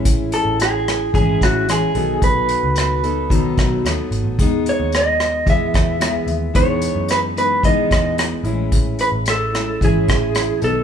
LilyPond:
<<
  \new Staff \with { instrumentName = "Clean electric guitar" } { \time 4/4 \key a \lydian \tempo 4 = 111 r8 a'8 gis'4 gis'8 fis'8 gis'4 | b'2.~ b'8 r8 | r8 cis''8 dis''4 e''2 | cis''4 b'8 b'8 dis''4 r4 |
r8 b'8 a'4 gis'4. a'8 | }
  \new Staff \with { instrumentName = "Steel-string acoustic guitar" } { \time 4/4 \key a \lydian <a, e gis cis' e'>2 <a, e gis cis' e'>4 <e gis cis' e'>8 <b, dis fis b dis' a'>8~ | <b, dis fis b dis' a'>4. <fis b dis' a'>8 <b, dis fis b dis' a'>4 <fis b dis' a'>4 | <gis b dis'>2 <e gis b>4 <e gis b>4 | <e gis b dis'>4. <gis b dis'>8 <e gis b dis'>4. <a, e gis cis' e'>8~ |
<a, e gis cis' e'>4. <gis cis' e'>8 <a, e gis cis' e'>4. <b, dis fis b dis' a'>8 | }
  \new Staff \with { instrumentName = "Picked electric bass" } { \clef bass \time 4/4 \key a \lydian a,,8. a,,4~ a,,16 gis,,8 a,,4 b,,8 | b,,8. cis,4.~ cis,16 b,,8 dis,16 r16 gis,,16 a,,16 | e,8. dis,4~ dis,16 e,8 e,4 dis,8 | e,8. fis,4.~ fis,16 e,4 a,,8~ |
a,,8. a,,4~ a,,16 gis,,8 a,,4 b,,8 | }
  \new DrumStaff \with { instrumentName = "Drums" } \drummode { \time 4/4 <hh bd>8 hh8 <hh ss>8 <hh ss>8 <hh bd>8 <hh bd ss>8 <hh ss>8 hh8 | <hh bd>8 hh8 <hh ss>8 hh8 <hh bd>8 <hh bd ss>8 <hh ss>8 hh8 | <hh bd>8 hh8 <hh ss>8 <hh ss>8 <hh bd>8 <hh bd ss>8 <hh ss>8 hh8 | <hh bd>8 hh8 <hh ss>8 hh8 <hh bd>8 <hh bd ss>8 <hh ss>8 hh8 |
<hh bd>8 hh8 <hh ss>8 <hh ss>8 <hh bd>8 <hh bd ss>8 <hh ss>8 hh8 | }
>>